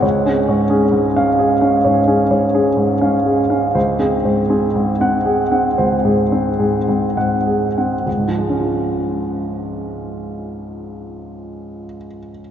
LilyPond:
\new Staff \with { instrumentName = "Grand piano" } { \time 4/4 \key des \major \tempo 4 = 57 << { des,16 des'16 aes,16 des'16 aes,16 <des' f''>8 des'16 aes,16 des'16 aes,16 des'8 des'8 des'16 | des,16 c'16 aes,16 c'8 <c' ges''>8 c'16 des,16 aes,16 c'16 aes,16 c'16 aes,8 c'16 | <des, aes, f aes des' f'>1 | } \\ { des''16 aes'16 des''16 aes'8 r16 aes'16 f''16 des''16 aes'16 des''16 aes'16 aes,16 f''16 aes'16 f''16 | c''16 aes'16 c''16 aes'16 aes,8 aes'16 ges''16 c''16 aes'16 c''16 aes'16 aes,16 ges''16 aes'16 ges''16 | r1 | } >> }